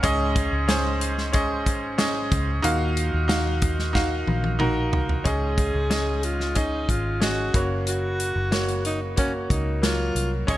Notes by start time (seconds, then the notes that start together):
0.03 C#2 G#2 C#4 G#4 D#5, kick, closed hi-hat
0.36 kick, closed hi-hat
0.52 C#2
0.68 C#4 G#4 C5, snare, closed hi-hat
1.01 closed hi-hat
1.18 snare
1.33 C#4 G#4 D#5, kick, closed hi-hat
1.66 G#1, kick, closed hi-hat
1.98 C#4 G#4 D#5, snare, closed hi-hat
2.32 C#2, kick, closed hi-hat
2.62 D#2 A#2 D#4 F#4 F5, closed hi-hat
2.97 closed hi-hat
3.13 D#2
3.28 D#4 F#4 F5, snare, closed hi-hat
3.62 kick, closed hi-hat
3.79 snare
3.93 D#4 F#4 F5, kick, snare
4.27 A#1, high tom
4.44 high tom
4.59 D#4 F#4 A#4, mid tom
4.93 C2, floor tom
5.09 floor tom
5.24 C#2 G#2 C#4 G#4 D#5, kick, closed hi-hat
5.58 kick, closed hi-hat
5.74 C#2
5.90 C#4 G#4 D#5, snare, closed hi-hat
6.23 F4, closed hi-hat
6.40 snare
6.55 C#4 D#4 G#4 D#5, kick, closed hi-hat
6.89 G#1 F4, kick, closed hi-hat
7.20 C#4 F#4 G#4 D#5, snare, closed hi-hat
7.54 F#1 C#3 A#3 F#4 C#5, kick, closed hi-hat
7.87 F#4, closed hi-hat
8.20 closed hi-hat
8.36 F#1
8.51 A#3 F#4 C#5, snare, closed hi-hat
8.69 closed hi-hat
8.85 D#4, closed hi-hat
9.16 A#3 C#4 F#4 C#5, kick, closed hi-hat
9.50 C#2 D#4, kick, closed hi-hat
9.82 F#3 A#3 F4 C#5, snare, closed hi-hat
10.15 C2, closed hi-hat
10.47 C#2 G#2 C#4 G#4 C#5 D#5, kick, closed hi-hat